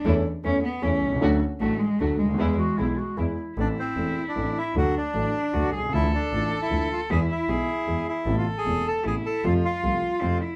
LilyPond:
<<
  \new Staff \with { instrumentName = "Clarinet" } { \time 3/4 \key e \mixolydian \tempo 4 = 154 r2. | r2. | r8 fis'8 e'8 fis'8 e'4 | \key a \minor r2. |
r2. | r2. | r2. | r2. |
r2. | }
  \new Staff \with { instrumentName = "Bandoneon" } { \time 3/4 \key e \mixolydian r2. | r2. | r2. | \key a \minor d'8 c'4~ c'16 d'8. e'8 |
fis'8 d'2 r8 | e'8 d'4~ d'16 e'8. f'8 | gis'8 e'2 e'8~ | e'16 f'8 gis'8. a'8 gis'8 a'8 |
f'8 f'2 r8 | }
  \new Staff \with { instrumentName = "Cello" } { \time 3/4 \key e \mixolydian r4 cis'8 b8 cis'4 | r4 a8 gis8 a8 gis8~ | gis2 r4 | \key a \minor e'2. |
d'2 fis'8 gis'8 | a'2. | e'4 gis'4. r8 | a'2 e'4 |
f'2 c'8 e'8 | }
  \new Staff \with { instrumentName = "String section" } { \time 3/4 \key e \mixolydian <a cis' e'>8 r8 <a cis' e'>8 r8 <a cis' e'>8 r8 | <a d' fis'>8 r8 <a d' fis'>8 r8 <a d' fis'>8 r8 | <gis b e'>8 r8 <gis b e'>8 r8 <gis b e'>8 r8 | \key a \minor r2. |
r2. | r2. | r2. | r2. |
r2. | }
  \new Staff \with { instrumentName = "Grand piano" } { \clef bass \time 3/4 \key e \mixolydian <e, e a cis' a'>8 r8 <e, e a cis' a'>8 r8 <e, e a cis' a'>8 r32 b,,32 c,32 cis,32 | <d, d fis a d' a'>8 r8 <a,, a, fis a d' a'>8 r8 <d, d fis a d' a'>8 r32 cis,32 d,32 dis,32 | <e, e gis b gis'>8 r8 <b,, b, e gis b gis'>8 r8 <e, e gis b gis'>8 r8 | \key a \minor <a,, a, e a c' a'>8 r8 <e,, e, e a c' a'>8 r8 <a,, a, e a c' a'>8 r8 |
<d, d fis a d' a'>8 r8 <a,, a, fis a d' a'>8 r8 <d, d fis a d' a'>8 r32 b,,32 c,32 cis,32 | <d, d e a d' f'>8 r8 <a,, a, e a d' f'>8 r8 <d, d e a d' f'>8 r8 | <e, e gis b gis'>8 r8 <b,, b, e gis b gis'>8 r8 <e, e gis b gis'>8 r8 | <a,, a, c a b e'>8 r8 <e,, e, c a b e'>8 r8 <a,, a, c a b e'>8 r8 |
<f, c f a f'>8 r8 <c, c f a f'>8 r8 <f, c f a f'>8 r8 | }
  \new Staff \with { instrumentName = "Double bass" } { \clef bass \time 3/4 \key e \mixolydian e,8 r8 e,8 r8 e,8 c,8 | d,8 r8 a,,8 r8 d,8 d,8 | e,8 r8 b,,8 r8 e,8 r8 | \key a \minor a,,8 r8 e,,8 r8 a,,8 r8 |
d,8 r8 a,,8 r8 d,8 c,8 | d,8 r8 a,,8 r8 d,8 r8 | e,8 r8 b,,8 r8 e,8 r8 | a,,8 r8 e,,8 r8 a,,8 r8 |
f,8 r8 c,8 r8 f,8 r8 | }
>>